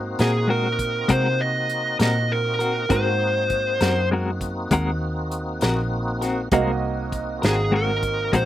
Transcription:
Already playing: G#2 A#3 C4 D#4 F#4 A#4 C5
0.19 A#2 C4 F#4 G#4 A#4, snare, closed hi-hat
0.48 G#3 C4 F#4 A#4
0.79 kick, closed hi-hat
1.08 C3 G#3 C4 F#4 A#4 C5, kick, closed hi-hat
1.41 D#5
1.69 closed hi-hat
1.99 A#2 C4 F#4 A#4 D#5, snare, closed hi-hat
2.32 A#4
2.59 C4 F#4 A#4, closed hi-hat
2.89 G#2 G#3 A#3 C4 D#4 F#4 A#4 C5, kick, closed hi-hat
2.93 C5
3.50 kick, closed hi-hat
3.81 F#2 C4 F#4 A#4, snare, closed hi-hat
4.11 G#3 C4 F#4 A#4
4.41 kick, closed hi-hat
4.71 D#2 G#3 C4 F#4 A#4, kick, closed hi-hat
5.32 closed hi-hat
5.61 A#1 C4 F#4 A#4, snare, closed hi-hat
6.22 C4 F#4 A#4, snare, closed hi-hat
6.52 C2 G#3 A#3 C4 D#4 F#4 A#4 D#5, kick, closed hi-hat
7.12 kick, closed hi-hat
7.42 G#1 C4 F#4 G#4 A#4, snare, closed hi-hat
7.71 G#3 C4 F#4 A#4
7.76 A#4
8.03 kick, closed hi-hat
8.33 A#1 G#3 C4 F#4 A#4 C5, kick, closed hi-hat

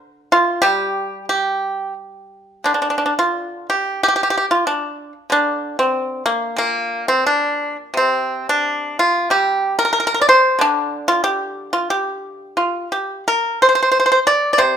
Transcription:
Already playing: D3
0.32 F4
0.62 G3 G4
1.29 G4
2.64 D3 D4
2.74 D4
2.82 D4
2.90 D4
2.98 D4
3.06 D4
3.19 F4
3.70 G4
4.03 G4
4.08 G4
4.16 G4
4.23 G4
4.30 G4
4.38 G4
4.51 F4
4.67 D4
5.30 D3 D4
5.79 C4
6.26 A#3
6.56 A#2 A#3
7.08 C4
7.27 D4
7.94 C3 C4
8.49 D4
8.99 F4
9.30 G3 G4
9.79 A#4
9.85 A#4
9.93 A#4
10.00 A#4
10.07 A#4
10.14 A#4
10.21 D5
10.29 C5
10.59 D3 D4
11.08 F4
11.24 G4
11.73 F4
11.90 G4
12.57 F4
12.92 G4
13.28 A#4
13.62 C5
13.69 C5
13.75 C5
13.83 C5
13.91 C5
14.00 C5
14.06 C5
14.12 C5
14.27 D5
14.53 D5
14.58 C3 C5

